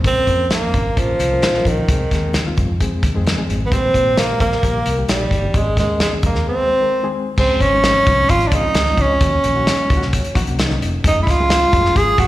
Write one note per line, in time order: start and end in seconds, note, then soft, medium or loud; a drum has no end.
0.04 0.22 A#1 medium
0.04 0.22 F3 medium
0.04 0.22 A#3 medium
0.04 0.48 C4 loud
0.04 0.22 C#4 medium
0.04 0.22 A#4 medium
0.04 kick loud
0.04 closed hi-hat medium
0.04 muted conga soft
0.26 0.61 F2 medium
0.26 0.53 F3 medium
0.26 0.53 A#3 medium
0.26 0.54 C#4 medium
0.26 0.54 A#4 medium
0.26 kick medium
0.26 closed hi-hat medium
0.50 1.00 A#3 medium
0.50 snare loud
0.50 closed hi-hat medium
0.50 high conga medium
0.62 0.88 F3 medium
0.62 0.88 A#3 medium
0.62 0.89 C#4 medium
0.62 0.89 A#4 medium
0.74 0.91 G#1 medium
0.74 kick medium
0.74 closed hi-hat medium
0.74 low conga medium
0.96 1.14 A#1 medium
0.96 1.22 F3 medium
0.96 1.69 F3 medium
0.96 1.23 A#3 medium
0.96 1.23 C#4 medium
0.96 1.23 A#4 medium
0.96 kick medium
0.96 closed hi-hat medium
0.96 muted conga soft
0.96 low conga medium
1.19 1.42 C2 medium
1.19 closed hi-hat loud
1.19 muted conga soft
1.31 1.48 F3 medium
1.31 1.48 A#3 medium
1.31 1.49 C#4 medium
1.31 1.49 A#4 medium
1.42 1.59 A#1 medium
1.42 snare loud
1.42 closed hi-hat medium
1.42 high conga medium
1.55 1.80 F3 medium
1.55 1.81 A#3 medium
1.55 1.81 C#4 medium
1.55 1.81 A#4 medium
1.55 snare soft
1.55 high conga soft
1.65 1.82 A#1 medium
1.65 2.58 D#3 medium
1.65 kick medium
1.65 closed hi-hat medium
1.77 high conga medium
1.88 2.05 C2 medium
1.88 2.06 D#3 medium
1.88 2.06 G#3 medium
1.88 2.07 C4 medium
1.88 2.07 G#4 medium
1.88 kick loud
1.88 closed hi-hat medium
1.88 muted conga soft
2.11 2.37 D#2 medium
2.11 2.38 D#3 medium
2.11 2.38 G#3 medium
2.11 2.38 C4 medium
2.11 2.39 G#4 medium
2.11 kick medium
2.11 snare soft
2.11 closed hi-hat medium
2.11 muted conga soft
2.34 snare loud
2.34 closed hi-hat medium
2.34 high conga medium
2.46 2.72 D#3 medium
2.46 2.72 G#3 medium
2.46 2.72 C4 medium
2.46 2.72 F4 medium
2.57 2.66 F#2 medium
2.57 kick medium
2.57 closed hi-hat medium
2.57 low conga medium
2.69 2.86 F2 loud
2.80 3.06 D#3 medium
2.80 3.06 G#3 medium
2.80 3.07 C4 medium
2.80 3.07 G#4 medium
2.80 kick medium
2.80 closed hi-hat medium
2.80 muted conga soft
3.03 3.11 D#2 loud
3.03 kick loud
3.03 closed hi-hat medium
3.03 muted conga medium
3.03 low conga medium
3.15 3.40 F2 medium
3.15 3.32 D#3 medium
3.15 3.32 G#3 medium
3.15 3.32 C4 medium
3.15 3.33 G#4 medium
3.25 snare loud
3.25 closed hi-hat medium
3.25 high conga medium
3.37 3.63 D#3 medium
3.37 3.64 G#3 medium
3.37 3.63 C4 medium
3.37 3.64 G#4 medium
3.37 high conga soft
3.49 3.66 G#1 medium
3.49 closed hi-hat medium
3.61 high conga medium
3.65 3.74 B3 medium
3.65 3.71 B4 medium
3.71 3.89 A#1 medium
3.71 3.88 D#3 medium
3.71 3.89 G3 medium
3.71 3.89 A#3 medium
3.71 4.20 C4 loud
3.71 3.90 G4 medium
3.71 4.17 C5 loud
3.71 kick loud
3.71 closed hi-hat medium
3.71 muted conga soft
3.94 4.42 A#2 medium
3.94 4.20 D#3 medium
3.94 4.21 G3 medium
3.94 4.21 A#3 medium
3.94 4.21 G4 medium
3.94 kick medium
3.94 closed hi-hat medium
4.17 4.40 A#3 loud
4.17 4.38 A#4 medium
4.17 snare loud
4.17 closed hi-hat loud
4.17 high conga medium
4.29 4.55 D#3 medium
4.29 4.55 G3 medium
4.29 4.55 A#3 medium
4.29 4.55 G4 medium
4.40 4.57 A#1 medium
4.40 5.05 A#3 loud
4.40 5.05 A#4 medium
4.40 kick medium
4.40 closed hi-hat medium
4.40 low conga medium
4.52 snare soft
4.63 4.80 A#1 loud
4.63 4.89 D#3 medium
4.63 4.89 G3 medium
4.63 4.89 A#3 medium
4.63 4.90 G4 medium
4.63 kick medium
4.63 closed hi-hat medium
4.63 muted conga soft
4.63 low conga medium
4.86 5.03 C2 loud
4.86 closed hi-hat loud
4.86 muted conga soft
4.97 5.15 D#3 medium
4.97 5.15 G3 medium
4.97 5.15 A#3 medium
4.97 5.15 G4 medium
5.08 5.26 A#1 medium
5.08 5.58 G3 medium
5.08 5.52 G4 medium
5.08 snare loud
5.08 closed hi-hat loud
5.08 high conga medium
5.18 5.46 D#3 medium
5.18 5.46 G3 medium
5.18 5.46 A#3 medium
5.18 5.46 D#4 medium
5.18 high conga medium
5.31 5.48 G1 loud
5.31 kick medium
5.31 closed hi-hat medium
5.44 high conga medium
5.53 5.79 G#1 loud
5.53 5.71 D#3 medium
5.53 5.72 G#3 medium
5.53 5.78 G#3 loud
5.53 5.72 C#4 medium
5.53 5.72 G#4 medium
5.53 5.79 G#4 medium
5.53 kick loud
5.53 closed hi-hat medium
5.53 muted conga soft
5.75 6.03 D#2 medium
5.75 6.03 D#3 medium
5.75 6.03 G#3 medium
5.75 6.00 G#3 medium
5.75 6.03 C#4 medium
5.75 6.03 A#4 medium
5.75 kick medium
5.75 snare soft
5.75 closed hi-hat medium
5.75 muted conga soft
6.00 6.12 G#3 medium
6.00 6.12 G#4 medium
6.00 snare loud
6.00 closed hi-hat loud
6.00 high conga medium
6.11 6.38 D#3 medium
6.11 6.38 G#3 medium
6.11 6.38 C#4 medium
6.11 6.38 G#4 medium
6.23 6.32 F2 medium
6.23 6.46 A#3 medium
6.23 6.46 A#4 medium
6.23 kick loud
6.23 closed hi-hat medium
6.23 low conga medium
6.34 6.43 D#2 loud
6.34 snare soft
6.45 6.72 D#3 medium
6.45 6.72 G#3 medium
6.45 6.73 C4 medium
6.45 7.12 C4 medium
6.45 6.73 G#4 medium
6.45 7.12 C5 medium
6.80 6.98 D#3 medium
6.80 6.98 G#3 medium
6.80 6.98 C4 medium
6.80 6.99 A#4 medium
7.03 7.29 D#3 medium
7.03 7.29 G#3 medium
7.03 7.30 C4 medium
7.03 7.30 G#4 loud
7.37 7.55 C#2 loud
7.37 7.64 F3 medium
7.37 7.64 G#3 medium
7.37 7.64 C4 medium
7.37 7.63 C4 medium
7.37 7.64 C#4 medium
7.37 7.64 G#4 medium
7.37 7.58 C5 medium
7.37 kick loud
7.37 crash medium
7.59 7.95 G#1 loud
7.59 8.31 C#4 loud
7.59 8.29 C#5 medium
7.59 kick medium
7.59 closed hi-hat medium
7.73 7.98 F3 medium
7.73 7.99 G#3 medium
7.73 7.99 C4 medium
7.73 7.99 C#4 medium
7.73 7.99 D#4 medium
7.84 snare loud
7.84 closed hi-hat loud
8.07 8.24 C2 medium
8.07 8.41 F3 medium
8.07 8.42 G#3 medium
8.07 8.42 C4 medium
8.07 8.42 C#4 medium
8.07 8.42 D#4 medium
8.07 kick loud
8.07 closed hi-hat medium
8.28 8.46 G#1 loud
8.28 8.49 F4 loud
8.28 8.45 F5 loud
8.28 kick medium
8.28 closed hi-hat medium
8.40 closed hi-hat soft
8.44 8.56 D4 medium
8.44 8.52 D5 medium
8.51 8.69 C#3 loud
8.51 8.78 F3 medium
8.51 8.79 G#3 medium
8.51 8.79 C4 medium
8.51 8.79 C#4 medium
8.51 9.02 D#4 loud
8.51 8.79 G#4 medium
8.51 8.97 D#5 medium
8.51 kick loud
8.51 closed hi-hat loud
8.74 8.91 C#2 medium
8.74 snare loud
8.74 closed hi-hat medium
8.86 9.13 F3 medium
8.86 9.13 G#3 medium
8.86 9.13 C4 medium
8.86 9.13 C#4 medium
8.86 9.14 F4 medium
8.86 snare soft
8.97 9.15 C#2 loud
8.97 10.37 C#4 medium
8.97 10.35 C#5 medium
8.97 kick medium
8.97 closed hi-hat medium
9.21 9.38 D#2 loud
9.21 9.47 D#3 medium
9.21 9.47 F#3 medium
9.21 9.47 A#3 medium
9.21 9.48 C#4 medium
9.21 9.48 F#4 medium
9.21 kick loud
9.21 closed hi-hat medium
9.44 9.69 A#1 medium
9.44 closed hi-hat medium
9.55 9.81 D#3 medium
9.55 9.81 F#3 medium
9.55 9.81 A#3 medium
9.55 9.81 C#4 medium
9.55 9.82 F#4 loud
9.67 snare loud
9.67 closed hi-hat loud
9.90 9.98 C#2 loud
9.90 10.24 D#3 loud
9.90 10.25 F#3 medium
9.90 10.25 A#3 medium
9.90 10.25 C#4 medium
9.90 9.96 F4 medium
9.90 kick loud
9.90 closed hi-hat medium
9.97 10.28 F#4 loud
10.02 10.18 C2 medium
10.02 snare soft
10.13 kick medium
10.13 closed hi-hat medium
10.24 closed hi-hat medium
10.35 10.44 A#1 loud
10.35 10.61 D#3 loud
10.35 10.61 F#3 medium
10.35 10.62 A#3 medium
10.35 10.62 C#4 medium
10.35 10.62 F#4 loud
10.35 kick loud
10.35 closed hi-hat loud
10.47 10.84 C2 loud
10.47 closed hi-hat medium
10.59 snare loud
10.59 closed hi-hat medium
10.69 10.95 D#3 medium
10.69 10.96 F#3 medium
10.69 10.96 A#3 medium
10.69 10.96 C#4 medium
10.69 10.96 D#4 loud
10.69 snare soft
10.82 10.99 F1 medium
10.82 closed hi-hat medium
11.04 11.21 F#1 loud
11.04 11.30 F#3 medium
11.04 11.30 G#3 medium
11.04 11.30 A3 medium
11.04 11.31 C#4 medium
11.04 11.21 D#4 medium
11.04 11.31 G#4 medium
11.04 11.20 D#5 medium
11.04 kick loud
11.04 closed hi-hat loud
11.21 11.31 E4 medium
11.21 11.27 E5 medium
11.27 11.61 C#2 medium
11.27 11.98 F4 loud
11.27 11.96 F5 medium
11.27 kick medium
11.27 snare soft
11.27 closed hi-hat medium
11.40 11.65 F#3 medium
11.40 11.65 G#3 medium
11.40 11.65 A3 medium
11.40 11.65 C#4 medium
11.40 11.66 G#4 medium
11.50 snare loud
11.50 closed hi-hat loud
11.73 11.90 F#1 medium
11.73 12.08 F#3 medium
11.73 12.08 G#3 medium
11.73 12.08 A3 medium
11.73 12.08 C#4 medium
11.73 11.79 G4 medium
11.73 kick loud
11.73 closed hi-hat medium
11.80 12.11 G#4 medium
11.85 snare soft
11.96 12.13 G#1 medium
11.96 12.21 G#4 loud
11.96 12.19 G#5 loud
11.96 kick medium
11.96 closed hi-hat medium
12.18 12.27 A1 medium
12.18 12.27 F#3 medium
12.18 12.27 G#3 medium
12.18 12.27 A3 medium
12.18 12.27 C#4 medium
12.18 12.27 F#4 loud
12.18 12.27 G#4 medium
12.18 12.27 F#5 medium
12.18 kick loud
12.18 closed hi-hat loud